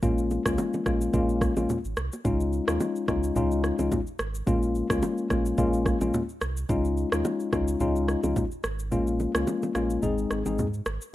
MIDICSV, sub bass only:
0, 0, Header, 1, 2, 480
1, 0, Start_track
1, 0, Key_signature, -5, "major"
1, 0, Tempo, 555556
1, 23, Time_signature, 4, 2, 24, 8
1, 9630, End_track
2, 0, Start_track
2, 0, Title_t, "Sub bass"
2, 0, Program_c, 0, 38
2, 24, Note_on_c, 0, 34, 104
2, 332, Note_off_c, 0, 34, 0
2, 394, Note_on_c, 0, 37, 92
2, 484, Note_off_c, 0, 37, 0
2, 743, Note_on_c, 0, 34, 97
2, 942, Note_off_c, 0, 34, 0
2, 981, Note_on_c, 0, 34, 103
2, 1290, Note_off_c, 0, 34, 0
2, 1355, Note_on_c, 0, 34, 80
2, 1445, Note_off_c, 0, 34, 0
2, 1594, Note_on_c, 0, 32, 89
2, 1684, Note_off_c, 0, 32, 0
2, 1704, Note_on_c, 0, 36, 89
2, 1813, Note_off_c, 0, 36, 0
2, 1943, Note_on_c, 0, 37, 105
2, 2251, Note_off_c, 0, 37, 0
2, 2315, Note_on_c, 0, 39, 95
2, 2405, Note_off_c, 0, 39, 0
2, 2663, Note_on_c, 0, 37, 92
2, 2862, Note_off_c, 0, 37, 0
2, 2904, Note_on_c, 0, 37, 108
2, 3212, Note_off_c, 0, 37, 0
2, 3276, Note_on_c, 0, 37, 90
2, 3365, Note_off_c, 0, 37, 0
2, 3623, Note_on_c, 0, 32, 90
2, 3822, Note_off_c, 0, 32, 0
2, 3863, Note_on_c, 0, 34, 97
2, 4171, Note_off_c, 0, 34, 0
2, 4233, Note_on_c, 0, 37, 88
2, 4324, Note_off_c, 0, 37, 0
2, 4582, Note_on_c, 0, 34, 99
2, 4781, Note_off_c, 0, 34, 0
2, 4821, Note_on_c, 0, 34, 93
2, 5130, Note_off_c, 0, 34, 0
2, 5194, Note_on_c, 0, 34, 85
2, 5284, Note_off_c, 0, 34, 0
2, 5543, Note_on_c, 0, 36, 91
2, 5742, Note_off_c, 0, 36, 0
2, 5783, Note_on_c, 0, 37, 106
2, 6091, Note_off_c, 0, 37, 0
2, 6155, Note_on_c, 0, 39, 93
2, 6245, Note_off_c, 0, 39, 0
2, 6503, Note_on_c, 0, 37, 91
2, 6702, Note_off_c, 0, 37, 0
2, 6744, Note_on_c, 0, 37, 103
2, 7052, Note_off_c, 0, 37, 0
2, 7116, Note_on_c, 0, 37, 94
2, 7205, Note_off_c, 0, 37, 0
2, 7463, Note_on_c, 0, 32, 92
2, 7704, Note_on_c, 0, 34, 100
2, 7717, Note_off_c, 0, 32, 0
2, 8012, Note_off_c, 0, 34, 0
2, 8076, Note_on_c, 0, 37, 84
2, 8165, Note_off_c, 0, 37, 0
2, 8424, Note_on_c, 0, 34, 93
2, 8622, Note_off_c, 0, 34, 0
2, 8665, Note_on_c, 0, 32, 106
2, 8863, Note_off_c, 0, 32, 0
2, 8905, Note_on_c, 0, 32, 93
2, 9014, Note_off_c, 0, 32, 0
2, 9037, Note_on_c, 0, 32, 89
2, 9143, Note_on_c, 0, 44, 90
2, 9156, Note_off_c, 0, 32, 0
2, 9342, Note_off_c, 0, 44, 0
2, 9384, Note_on_c, 0, 32, 95
2, 9493, Note_off_c, 0, 32, 0
2, 9630, End_track
0, 0, End_of_file